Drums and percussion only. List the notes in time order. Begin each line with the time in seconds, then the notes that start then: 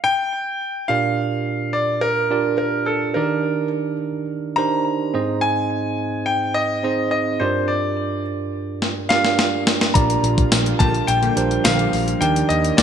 8.82 snare
9.10 snare
9.25 snare
9.39 snare
9.67 snare
9.81 snare
9.95 kick, closed hi-hat
10.10 closed hi-hat
10.24 closed hi-hat
10.38 kick, closed hi-hat
10.52 snare, closed hi-hat, tambourine
10.66 closed hi-hat
10.80 kick, closed hi-hat
10.94 closed hi-hat
11.08 closed hi-hat
11.23 closed hi-hat
11.37 closed hi-hat
11.51 closed hi-hat
11.65 snare, closed hi-hat, tambourine
11.79 closed hi-hat
11.93 open hi-hat
12.08 closed hi-hat
12.22 closed hi-hat
12.36 closed hi-hat
12.50 closed hi-hat
12.64 closed hi-hat
12.78 snare, closed hi-hat, tambourine